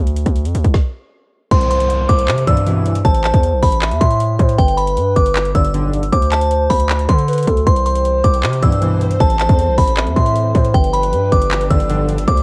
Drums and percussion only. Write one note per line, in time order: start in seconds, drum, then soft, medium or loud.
0.07 closed hi-hat medium
0.16 closed hi-hat medium
0.26 kick loud
0.26 closed hi-hat medium
0.36 closed hi-hat medium
0.45 closed hi-hat medium
0.55 closed hi-hat medium
0.65 kick medium
0.65 closed hi-hat medium
0.74 kick loud
0.74 snare medium
1.51 kick loud
1.51 closed hi-hat medium
1.61 closed hi-hat medium
1.70 closed hi-hat medium
1.80 closed hi-hat medium
1.90 closed hi-hat medium
2.09 kick medium
2.09 closed hi-hat medium
2.18 closed hi-hat medium
2.28 clap loud
2.28 closed hi-hat medium
2.38 closed hi-hat medium
2.47 kick loud
2.47 closed hi-hat medium
2.57 closed hi-hat medium
2.66 closed hi-hat medium
2.86 closed hi-hat medium
2.95 closed hi-hat medium
3.05 kick loud
3.05 closed hi-hat medium
3.15 closed hi-hat medium
3.24 clap loud
3.24 closed hi-hat medium
3.34 kick loud
3.34 closed hi-hat medium
3.43 closed hi-hat medium
3.63 kick medium
3.63 open hi-hat medium
3.72 closed hi-hat medium
3.82 clap loud
3.82 closed hi-hat medium
3.91 closed hi-hat medium
4.01 kick loud
4.01 closed hi-hat medium
4.11 closed hi-hat medium
4.20 closed hi-hat medium
4.40 kick loud
4.40 closed hi-hat medium
4.49 closed hi-hat medium
4.59 kick loud
4.59 closed hi-hat medium
4.68 closed hi-hat medium
4.78 closed hi-hat medium
4.88 closed hi-hat medium
4.97 closed hi-hat medium
5.16 kick medium
5.16 closed hi-hat medium
5.26 closed hi-hat medium
5.36 clap loud
5.36 closed hi-hat medium
5.45 closed hi-hat medium
5.55 kick loud
5.55 closed hi-hat medium
5.65 closed hi-hat medium
5.74 closed hi-hat medium
5.93 closed hi-hat medium
6.03 closed hi-hat medium
6.13 kick loud
6.13 closed hi-hat medium
6.22 closed hi-hat medium
6.32 clap loud
6.32 closed hi-hat medium
6.42 closed hi-hat medium
6.51 closed hi-hat medium
6.70 kick medium
6.70 open hi-hat medium
6.80 closed hi-hat medium
6.89 clap loud
6.89 closed hi-hat medium
6.99 closed hi-hat medium
7.09 kick loud
7.09 closed hi-hat medium
7.18 closed hi-hat medium
7.28 closed hi-hat medium
7.33 closed hi-hat medium
7.38 closed hi-hat medium
7.42 closed hi-hat medium
7.47 kick loud
7.47 closed hi-hat medium
7.57 closed hi-hat soft
7.66 kick loud
7.66 closed hi-hat medium
7.76 closed hi-hat medium
7.86 closed hi-hat medium
7.95 closed hi-hat medium
8.05 closed hi-hat medium
8.24 kick medium
8.24 closed hi-hat medium
8.34 closed hi-hat medium
8.43 clap loud
8.43 closed hi-hat medium
8.53 closed hi-hat medium
8.63 kick loud
8.63 closed hi-hat medium
8.72 closed hi-hat medium
8.82 closed hi-hat medium
9.01 closed hi-hat medium
9.11 closed hi-hat medium
9.20 kick loud
9.20 closed hi-hat medium
9.30 closed hi-hat medium
9.40 clap medium
9.40 closed hi-hat medium
9.49 kick loud
9.49 closed hi-hat medium
9.59 closed hi-hat medium
9.78 kick medium
9.78 open hi-hat medium
9.88 closed hi-hat medium
9.97 clap loud
9.97 closed hi-hat medium
10.07 closed hi-hat medium
10.17 kick medium
10.17 closed hi-hat medium
10.26 closed hi-hat medium
10.36 closed hi-hat medium
10.55 kick loud
10.55 closed hi-hat medium
10.65 closed hi-hat medium
10.74 kick loud
10.74 closed hi-hat medium
10.84 closed hi-hat medium
10.93 closed hi-hat medium
11.03 closed hi-hat medium
11.13 closed hi-hat medium
11.32 kick medium
11.32 closed hi-hat medium
11.41 closed hi-hat medium
11.51 clap loud
11.51 closed hi-hat medium
11.61 closed hi-hat medium
11.70 kick loud
11.70 closed hi-hat medium
11.80 closed hi-hat medium
11.90 closed hi-hat medium
12.09 closed hi-hat medium
12.18 closed hi-hat medium
12.28 kick loud
12.28 closed hi-hat medium
12.38 closed hi-hat medium